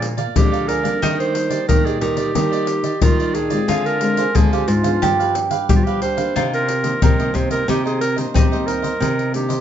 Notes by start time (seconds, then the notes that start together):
Already playing: A#2 F3 G#3 D4
0.01 muted cavaquinho stroke, pandeiro
0.17 A#4 D5 F5, pandeiro, shaker
0.36 F2 D3 F3 G#3 D4 G4, pandeiro, shaker, surdo
0.52 A#4 D5 F5, pandeiro, shaker
0.68 G#4 A#4 D5 F5, pandeiro, shaker
0.83 G3 A#3 D4 A#4 D5 F5, pandeiro, shaker
1.02 D#3 D#4 G4 D5 D#5, pandeiro, shaker, surdo
1.20 C5, pandeiro, shaker
1.34 G3 A#3 D4, muted cavaquinho stroke, pandeiro, shaker
1.50 G4 D5 D#5, pandeiro, shaker
1.68 A#2 D#3 G3 A#3 D4 G4 A#4 D5 D#5, pandeiro, shaker, surdo
1.85 G4 G#4 D5 D#5, pandeiro, shaker
2.01 D#3 G4, pandeiro
2.17 G4 D5 D#5, pandeiro, shaker
2.35 D#3 G3 A#3 D4 G4 D5 D#5, pandeiro, shaker, surdo
2.52 G4 D5 D#5, pandeiro, shaker
2.67 muted cavaquinho stroke, pandeiro, shaker
2.84 G4 D5 D#5, pandeiro, shaker
3.02 A#2 D#3 G3 A#3 F4, pandeiro, shaker, surdo
3.20 G4 D5 D#5, pandeiro, shaker
3.35 D4 G4 G#4 D5 D#5, pandeiro, shaker
3.50 G#3 C4 F4 G4 D5 D#5, pandeiro, shaker
3.69 D3 D4 F4 G#4 C5 F5, pandeiro, shaker, surdo
3.86 A#4, pandeiro, shaker
4.01 G#3 C4 F4, pandeiro, shaker
4.17 G#4 C5 F5, pandeiro, shaker
4.35 D3 G#3 C4 D4 F4 G#4 C5 F5, pandeiro, shaker, surdo
4.53 G4 G#4 C5 F5, pandeiro, shaker
4.68 G#2 F4, pandeiro, shaker
4.83 F3 B3 D4 G#4 C5 F5, pandeiro, shaker
5.02 G2 D4 G4 B4 F5, pandeiro, shaker, surdo
5.19 G4 B4 F5, pandeiro, shaker
5.35 muted cavaquinho stroke, pandeiro, shaker
5.51 G4 B4 F5, pandeiro, shaker
5.69 D3 F3 G3 B3 D4 G4, pandeiro, shaker, surdo
5.76 F4
5.84 G4 B4 F5, pandeiro, shaker
6.02 D4 G4 B4 C5 F5, pandeiro
6.17 D#3 A#3 D4 G4 B4 F5, pandeiro, shaker
6.36 C3 D#4 F4 A#4 C5 D#5, pandeiro, shaker, surdo
6.53 A#4, pandeiro, shaker
6.68 muted cavaquinho stroke, pandeiro
6.84 D#3 A#3 D4 A#4 C5 D#5, pandeiro, shaker
7.02 G2 C3 D#4 A#4 C5 D#5, pandeiro, shaker, surdo
7.20 D#3 A#3 A#4 C5 D#5, pandeiro, shaker
7.34 C3 C5, pandeiro, shaker, surdo
7.50 A#4 C5 D#5, pandeiro, shaker
7.68 C3 D#3 A#3 D#4 G4 A#4 C5 D#5, pandeiro, shaker, surdo
7.85 G#4 A#4 C5 D#5, pandeiro, shaker
8.01 A#4, muted cavaquinho stroke, pandeiro, shaker
8.16 D#3 A#3 D4 A#4 C5 D#5, pandeiro, shaker
8.34 G2 C4 D#4 G4, pandeiro, shaker, surdo
8.52 D#3 A#3 A#4 C5 D#5, pandeiro, shaker
8.67 D#4 A#4 C5 D#5, pandeiro
8.82 A#4 C5 D#5, pandeiro, shaker
9.00 C3 D#4 A#4 C5 D#5, pandeiro, shaker, surdo
9.19 pandeiro, shaker
9.33 D#3 A#3 D4 G4, muted cavaquinho stroke, pandeiro
9.49 A#4 C5 D#5, pandeiro, shaker